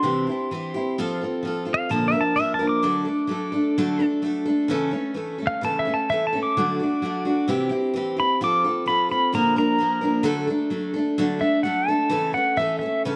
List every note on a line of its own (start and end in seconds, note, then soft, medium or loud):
0.00 0.27 C3 medium
0.00 0.27 E3 medium
0.00 0.28 C4 medium
0.00 1.17 C6 medium
0.04 0.28 E4 medium
0.04 0.26 G4 medium
0.27 0.51 E4 soft
0.27 0.51 G4 soft
0.32 0.51 C4 soft
0.51 0.75 E3 medium
0.51 0.75 C4 medium
0.51 0.75 E4 medium
0.51 0.73 G4 medium
0.74 0.98 C4 soft
0.74 0.99 E4 medium
0.74 0.98 G4 medium
0.98 1.21 F3 medium
0.98 1.22 C4 loud
0.98 1.22 F4 loud
0.98 1.20 A4 medium
1.21 1.44 C4 soft
1.21 1.44 F4 soft
1.21 1.45 A4 soft
1.43 1.67 F3 medium
1.43 1.67 C4 medium
1.43 1.65 F4 medium
1.47 1.64 A4 medium
1.65 1.90 C4 soft
1.65 1.90 F4 soft
1.65 1.90 A4 soft
1.74 1.90 F5 medium
1.89 2.14 A#2 medium
1.89 2.14 D3 medium
1.89 2.14 F3 medium
1.89 2.14 A#3 medium
1.89 2.12 D4 medium
1.89 2.11 A#4 medium
1.89 2.06 A5 medium
2.08 2.36 A#4 medium
2.08 2.22 E5 medium
2.13 2.34 F3 soft
2.13 2.36 A#3 soft
2.13 2.37 D4 soft
2.21 2.36 A5 medium
2.36 2.60 F3 medium
2.36 2.60 A#3 medium
2.36 2.59 D4 medium
2.36 2.52 E5 medium
2.40 2.58 A#4 medium
2.54 2.69 A5 medium
2.59 2.83 F3 soft
2.59 2.84 A#3 soft
2.59 2.82 D4 medium
2.59 2.83 A#4 medium
2.69 4.04 D6 loud
2.82 3.07 D3 medium
2.82 3.07 F#3 loud
2.82 3.07 A3 medium
2.82 3.06 D4 medium
2.82 3.04 A4 medium
3.05 3.28 A3 soft
3.05 3.29 D4 soft
3.05 3.29 A4 soft
3.27 3.52 F#3 medium
3.27 3.53 A3 medium
3.27 3.52 D4 medium
3.27 3.51 A4 medium
3.52 3.77 A3 soft
3.52 3.77 D4 medium
3.52 3.76 A4 soft
3.78 4.01 D3 medium
3.78 4.01 F#3 medium
3.78 4.01 A3 medium
3.78 3.99 D4 loud
3.78 3.98 A4 medium
3.99 4.21 A3 soft
3.99 4.23 D4 medium
3.99 4.23 A4 medium
4.22 4.46 F#3 medium
4.22 4.46 A3 medium
4.22 4.47 D4 medium
4.22 4.44 A4 medium
4.45 4.69 A3 soft
4.45 4.70 D4 medium
4.45 4.69 A4 medium
4.68 4.92 C#3 medium
4.68 4.93 E3 medium
4.68 4.93 A3 medium
4.68 4.92 C#4 loud
4.68 4.90 A4 loud
4.91 5.14 A3 soft
4.91 5.15 C#4 medium
4.91 5.15 A4 medium
5.14 5.39 E3 medium
5.14 5.39 A3 medium
5.14 5.38 C#4 medium
5.14 5.37 A4 medium
5.38 5.62 A3 soft
5.38 5.62 C#4 soft
5.38 5.62 A4 soft
5.47 5.62 F5 loud
5.61 5.85 C#3 medium
5.61 5.86 E3 medium
5.61 5.86 A3 medium
5.61 5.86 C#4 medium
5.61 5.84 A4 medium
5.61 5.79 A5 medium
5.79 5.94 E5 medium
5.85 6.10 A3 soft
5.85 6.10 C#4 soft
5.85 6.09 A4 medium
5.94 6.09 A5 medium
6.10 6.33 E3 medium
6.10 6.34 A3 medium
6.10 6.34 C#4 medium
6.10 6.25 E5 loud
6.14 6.31 A4 medium
6.27 6.41 A5 medium
6.33 6.57 A3 soft
6.33 6.57 C#4 soft
6.33 6.56 A4 medium
6.43 7.77 D6 medium
6.57 6.80 D3 medium
6.57 6.80 F#3 medium
6.57 6.80 A3 medium
6.57 6.80 D4 medium
6.57 6.78 F#4 medium
6.80 7.03 D4 soft
6.80 7.02 F#4 medium
6.84 7.02 A3 soft
7.02 7.25 F#3 medium
7.02 7.26 A3 medium
7.02 7.25 D4 medium
7.02 7.24 F#4 medium
7.25 7.48 A3 soft
7.25 7.49 D4 soft
7.25 7.48 F#4 medium
7.48 7.71 C3 medium
7.48 7.71 E3 medium
7.48 7.71 C4 loud
7.48 7.70 E4 loud
7.48 7.68 G4 medium
7.69 7.95 C4 medium
7.69 7.94 E4 medium
7.69 7.94 G4 medium
7.94 8.17 E3 medium
7.94 8.18 C4 medium
7.94 8.17 E4 medium
7.94 8.15 G4 medium
8.16 8.40 C4 soft
8.16 8.41 E4 soft
8.16 8.40 G4 medium
8.16 8.41 B5 medium
8.41 8.64 F3 medium
8.41 8.65 C4 medium
8.41 8.64 F4 medium
8.41 8.63 A4 medium
8.41 8.87 D6 medium
8.64 8.85 C4 soft
8.64 8.87 F4 medium
8.64 8.87 A4 medium
8.86 9.10 F3 medium
8.86 9.10 C4 medium
8.86 9.10 F4 medium
8.86 9.08 A4 medium
8.86 9.10 B5 medium
9.09 9.34 C4 soft
9.09 9.34 F4 soft
9.09 9.33 A4 soft
9.09 9.34 B5 medium
9.33 9.56 A#2 medium
9.33 9.57 D3 medium
9.33 9.57 F3 medium
9.33 9.57 A#3 medium
9.33 9.57 D4 medium
9.33 9.55 A#4 medium
9.33 9.57 A#5 medium
9.56 9.77 F3 soft
9.56 9.79 A#3 medium
9.56 9.79 D4 medium
9.56 9.80 A#4 medium
9.56 10.25 A#5 medium
9.78 10.02 F3 medium
9.78 10.03 A#3 medium
9.78 10.02 D4 medium
9.78 10.00 A#4 medium
10.01 10.23 F3 soft
10.01 10.24 A#3 soft
10.01 10.24 D4 medium
10.01 10.25 A#4 medium
10.23 10.48 D3 loud
10.23 10.48 F#3 loud
10.23 10.48 A3 loud
10.23 10.49 D4 loud
10.23 10.46 A4 loud
10.47 10.70 A3 soft
10.47 10.71 D4 medium
10.47 10.71 A4 medium
10.70 10.94 F#3 medium
10.70 10.95 A3 medium
10.70 10.95 D4 medium
10.70 10.92 A4 medium
10.94 11.18 D4 soft
10.94 11.18 A4 medium
10.99 11.18 A3 soft
11.18 11.41 D3 medium
11.18 11.41 F#3 loud
11.18 11.41 A3 loud
11.18 11.40 D4 medium
11.18 11.38 A4 medium
11.39 11.64 A3 soft
11.39 11.64 D4 soft
11.39 11.63 A4 medium
11.39 11.64 E5 medium
11.63 11.87 F#3 medium
11.63 11.88 A3 medium
11.63 11.88 D4 medium
11.63 11.87 A4 medium
11.63 11.89 F#5 medium
11.88 12.10 A3 soft
11.88 12.11 D4 soft
11.88 12.11 A4 medium
11.88 12.33 A5 medium
12.09 12.33 C#3 medium
12.09 12.33 E3 loud
12.09 12.34 A3 loud
12.09 12.34 C#4 medium
12.09 12.32 A4 medium
12.33 12.58 C#4 soft
12.33 12.56 A4 medium
12.33 12.56 F#5 medium
12.37 12.58 A3 medium
12.57 12.80 E3 medium
12.57 12.81 A3 medium
12.57 12.81 C#4 medium
12.57 12.80 A4 medium
12.57 12.78 E5 medium
12.79 13.05 C#4 soft
12.79 13.04 A4 soft
12.79 13.02 E5 medium
12.86 13.05 A3 soft
13.05 13.16 C#3 medium
13.05 13.16 E3 medium
13.05 13.16 A3 medium
13.05 13.16 C#4 medium
13.05 13.16 A4 medium